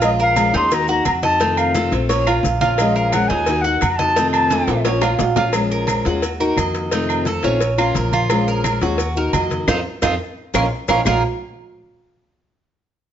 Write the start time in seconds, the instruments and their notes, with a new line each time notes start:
Already playing: upright bass A#1, cuban tres F4
0.02 steel-string acoustic guitar F3 G#3 C#4 F4, flute D#5, cowbell, low agogo, claves, maracas
0.19 cuban tres A#4, flute F5, maracas
0.36 steel-string acoustic guitar F3 G#3 C#4 F4, cowbell, high conga, low agogo, claves, maracas
0.54 upright bass D#2, steel-string acoustic guitar G#3 C#4 F4, cuban tres D#4, flute C6, cowbell, high conga, maracas
0.71 steel-string acoustic guitar D#3 A#3 D#4 F#4, flute A#5, cowbell, high conga, low agogo, maracas
0.88 steel-string acoustic guitar A#3 D#4 F#4, cuban tres F#4, flute A#5, high conga, maracas
1.05 upright bass F2, flute A#5, muted steel-string acoustic guitar stroke, cowbell, high conga, low agogo, claves, maracas
1.23 steel-string acoustic guitar A#3 D#4 F#4, cuban tres D#5, flute A5, cowbell, high conga, maracas
1.40 steel-string acoustic guitar C3 D#3 A3 C4 F4, cuban tres D#4, cowbell, high conga, low agogo, maracas
1.57 flute F5, high conga, low agogo, claves, maracas
1.75 steel-string acoustic guitar C3 D#3 A3 C4 F4, cuban tres A4, cowbell, high conga, maracas
1.92 upright bass A#1, steel-string acoustic guitar A3 C4 F4, cowbell, high conga, low agogo, maracas
2.09 steel-string acoustic guitar F3 A#3 C#4 F4, cuban tres C#5, cowbell, high conga, low agogo, maracas
2.26 steel-string acoustic guitar A#3 C#4 F4, cuban tres F4, high conga, low agogo, claves, maracas
2.43 upright bass A#1, muted steel-string acoustic guitar stroke, cowbell, high conga, maracas
2.61 steel-string acoustic guitar A#3 C#4 F4, cuban tres F4, high conga, low agogo, maracas
2.78 steel-string acoustic guitar F3 G#3 C#4 F4, flute D#5, cowbell, high conga, low agogo, claves, maracas
2.96 cuban tres A#4, flute F5, high conga, maracas
3.12 steel-string acoustic guitar F3 G#3 C#4 F4, flute F#5, cowbell, high conga, low agogo, claves, maracas
3.28 upright bass D#2, steel-string acoustic guitar C#4 F4, cuban tres D#4, flute G#5, cowbell, high conga, maracas
3.33 steel-string acoustic guitar G#3
3.46 steel-string acoustic guitar D#3 A#3 D#4 F#4, cowbell, high conga, low agogo, maracas
3.61 cuban tres F#4, steel-string acoustic guitar F#4, flute F#5, high conga, maracas
3.66 steel-string acoustic guitar A#3 D#4
3.81 upright bass F2, muted steel-string acoustic guitar stroke, cowbell, high conga, low agogo, claves, maracas
3.91 flute A#5
3.96 steel-string acoustic guitar D#4 F#4, cuban tres D#5, flute A5, cowbell, high conga, maracas
4.01 steel-string acoustic guitar A#3
4.16 steel-string acoustic guitar C3 D#3 A3 C4 F4, cuban tres D#4, cowbell, high conga, low agogo, maracas
4.31 flute A5, high conga, low agogo, claves, maracas
4.50 steel-string acoustic guitar C3 D#3 A3 C4 F4, cuban tres A4, cowbell, high conga, high timbale, maracas
4.67 upright bass A#1, steel-string acoustic guitar A3 C4 F4, cowbell, high timbale, low agogo, maracas
4.85 steel-string acoustic guitar F3 A#3 C#4 F4, cuban tres C#5, cowbell, low timbale, low agogo, maracas
5.01 steel-string acoustic guitar A#3 C#4 F4, cuban tres F4, high bongo, low timbale, low agogo, claves, maracas
5.19 upright bass A#1, muted steel-string acoustic guitar stroke, cowbell, low bongo, low timbale, maracas
5.36 steel-string acoustic guitar A#3 C#4 F4, cuban tres F4, low bongo, low conga, low timbale, low agogo, maracas
5.53 steel-string acoustic guitar F3 G#3 C#4 F4, cowbell, high conga, low agogo, claves, maracas
5.70 cuban tres A#4, high conga, maracas
5.87 steel-string acoustic guitar F3 G#3 C#4 F4, cowbell, high conga, low agogo, claves, maracas
6.04 upright bass D#2, steel-string acoustic guitar G#3 C#4 F4, cuban tres F#4, cowbell, high conga, maracas
6.22 muted steel-string acoustic guitar stroke, cowbell, high conga, low agogo, maracas
6.40 steel-string acoustic guitar A#3 D#4 F#4, cuban tres A#4, high conga, maracas
6.57 upright bass F2, steel-string acoustic guitar D#3 A#3 D#4 F#4, cuban tres D#5, cowbell, high conga, low agogo, claves, maracas
6.75 cowbell, maracas
6.91 steel-string acoustic guitar C3 D#3 A3 C4 F4, cuban tres D#4, cowbell, high conga, low agogo, maracas
7.09 high conga, low agogo, claves, maracas
7.25 steel-string acoustic guitar D#3 A3 C4 F4, cuban tres A4, cowbell, high conga, maracas
7.43 upright bass A#1, steel-string acoustic guitar D#3 A3 C4 F4, cuban tres C#4, cowbell, high conga, low agogo, maracas
7.60 muted steel-string acoustic guitar stroke, cowbell, high conga, low agogo, maracas
7.78 steel-string acoustic guitar A#3 C#4 F4, cuban tres F4, high conga, low agogo, claves, maracas
7.95 upright bass A#1, steel-string acoustic guitar F3 A#3 C#4 F4, cuban tres A#4, cowbell, high conga, maracas
8.12 cuban tres F4, high conga, low agogo, maracas
8.29 steel-string acoustic guitar F3 G#3 C#4 F4, cowbell, high conga, low agogo, claves, maracas
8.47 cuban tres A#4, high conga, maracas
8.64 steel-string acoustic guitar F3 G#3 C#4 F4, cowbell, high conga, low agogo, claves, maracas
8.81 upright bass D#2, steel-string acoustic guitar G#3 C#4 F4, cuban tres F#4, cowbell, high conga, maracas
8.98 muted steel-string acoustic guitar stroke, cowbell, high conga, low agogo, maracas
9.16 steel-string acoustic guitar A#3 D#4 F#4, cuban tres A#4, high conga, maracas
9.33 upright bass F2, steel-string acoustic guitar D#3 A#3 D#4 F#4, cuban tres D#5, cowbell, high conga, low timbale, low agogo, claves, maracas
9.50 cowbell, high conga, maracas
9.68 upright bass F2, steel-string acoustic guitar C4 D#4 F4, cuban tres D#4 F4 A4, cowbell, low conga, high timbale, claves, maracas
10.02 upright bass F2, steel-string acoustic guitar C4 D#4 F4, cuban tres D#4 F4 A4, cowbell, low conga, high timbale, claves, maracas
10.54 upright bass A#1, steel-string acoustic guitar F3 A#3 C#4, cuban tres C#4 F4 A#4, cowbell, low conga, high timbale, claves, maracas
10.88 upright bass A#1, steel-string acoustic guitar F3 A#3 C#4, cuban tres C#4 F4 A#4, cowbell, low conga, high timbale, claves, maracas
11.05 upright bass A#1, steel-string acoustic guitar A#2 F3 A#3 C#4 F4, cuban tres A#3 F4 A#4, low bongo, low conga, low timbale, claves, maracas